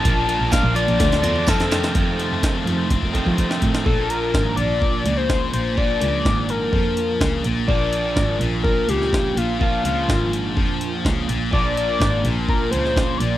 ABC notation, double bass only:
X:1
M:4/4
L:1/16
Q:1/4=125
K:Bb
V:1 name="Double bass" clef=bass
B,,,2 z B,,, z B,,, z B,,, D,,2 =E,, z F,, z F,, z | F,,3 F,,3 F,, z F,,2 z F,3 A,, z | B,,,4 _A,,,2 B,,,4 _D,,4 B,,,2- | B,,,2 _D,,2 _A,,,4 F,,4 D,,2 B,,,2 |
B,,,4 _A,,,2 B,,,4 _D,,4 B,,,2- | B,,,2 _D,,2 _A,,,4 F,,4 D,,2 B,,,2 | B,,,4 _A,,,2 B,,,4 _D,,4 B,,,2 |]